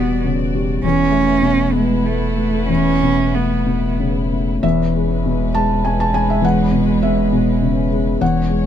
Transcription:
0.00 0.80 E1 medium
0.00 0.79 E2 medium
0.00 0.86 B2 medium
0.00 0.13 G3 medium
0.00 0.84 G3 medium
0.00 0.25 B3 medium
0.00 0.80 F#4 soft
0.00 0.84 D5 medium
0.25 0.54 C#3 soft
0.55 0.84 G3 medium
0.83 4.59 E1 medium
0.83 2.65 E2 medium
0.83 4.63 B3 medium
0.83 1.75 C#4 loud
0.83 4.64 E4 medium
0.83 4.63 B4 medium
1.11 1.60 A3 medium
1.42 1.92 B2 medium
1.73 2.07 G#3 medium
1.73 2.02 B3 medium
2.03 2.68 A3 medium
2.03 2.36 B3 soft
2.37 2.88 A3 soft
2.69 4.59 E2 medium
2.69 3.37 C#4 medium
3.02 3.54 B2 soft
3.35 3.86 A3 soft
3.35 3.99 B3 medium
3.66 4.18 B2 soft
3.99 4.32 C#3 soft
4.32 4.63 A3 soft
4.63 8.17 E1 medium
4.63 6.39 E2 medium
4.63 8.17 G#3 medium
4.63 8.18 G#3 medium
4.63 8.18 C#4 medium
4.63 8.18 B4 medium
4.63 5.49 E5 medium
4.96 5.42 G#3 medium
5.26 5.72 B2 medium
5.55 5.83 G#3 medium
5.55 5.82 A5 medium
5.85 6.11 G#3 soft
5.85 5.98 G#5 medium
6.00 6.13 A5 medium
6.13 6.60 G#3 medium
6.13 6.28 G#5 medium
6.30 6.43 E5 medium
6.42 8.16 E2 medium
6.42 6.99 F#5 medium
6.72 7.19 B2 medium
7.03 7.50 G#3 medium
7.03 7.87 E5 medium
7.32 7.80 B2 medium
7.62 7.91 C#3 soft
7.92 8.21 G#3 soft
8.20 8.66 E1 medium
8.20 8.66 E2 medium
8.20 8.66 G#3 medium
8.20 8.66 C#4 medium
8.20 8.66 C#5 medium
8.20 8.66 F#5 medium
8.50 8.66 G#3 medium

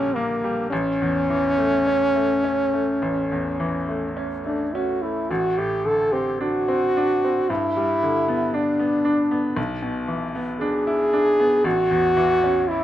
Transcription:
0.00 0.67 A#1 medium
0.00 0.73 A#2 medium
0.00 0.74 D3 medium
0.00 0.44 G3 medium
0.00 0.16 A#3 medium
0.00 0.17 C#4 medium
0.15 0.70 A#3 medium
0.15 0.60 A#3 medium
0.44 0.72 G3 medium
0.71 2.98 A1 medium
0.71 4.12 C#4 loud
1.02 1.47 E2 soft
1.30 1.75 E3 soft
1.58 2.04 A3 soft
1.87 2.32 C#4 soft
2.16 2.61 A3 soft
2.44 2.90 C#4 soft
2.74 3.19 A3 soft
3.02 5.26 A1 soft
3.32 3.77 E2 soft
3.60 4.05 E3 soft
3.89 4.34 A3 soft
4.17 4.62 C#4 soft
4.46 4.91 A3 soft
4.46 4.76 D4 medium
4.74 5.19 C#4 soft
4.74 5.04 F#4 medium
5.02 5.30 A3 soft
5.02 5.32 E4 medium
5.30 7.46 A1 medium
5.30 5.60 F#4 medium
5.57 6.02 A2 soft
5.57 5.87 G4 medium
5.85 6.29 D3 soft
5.85 6.14 A4 medium
6.12 6.57 C4 soft
6.12 6.40 G4 medium
6.41 6.85 D4 soft
6.41 7.51 F#4 medium
6.68 7.12 C4 soft
6.97 7.40 D4 soft
7.24 7.51 C4 soft
7.50 9.53 G2 medium
7.50 8.56 E4 medium
7.77 8.18 G3 soft
8.03 8.44 D3 medium
8.28 8.69 B3 soft
8.54 8.95 D4 soft
8.54 9.57 D4 medium
8.79 9.21 B3 soft
9.05 9.46 D4 soft
9.31 9.57 B3 soft
9.56 11.61 B1 medium
9.82 10.24 B2 soft
10.08 10.50 E3 soft
10.35 10.76 B3 soft
10.61 11.02 D4 medium
10.61 11.67 G#4 medium
10.87 11.29 E4 medium
11.13 11.55 D4 medium
11.40 11.66 B3 soft
11.64 12.84 A1 medium
11.64 12.71 F#4 medium
11.91 12.33 E2 medium
12.17 12.59 E3 medium
12.44 12.84 C#4 medium
12.69 12.84 E4 medium
12.69 12.84 E4 soft

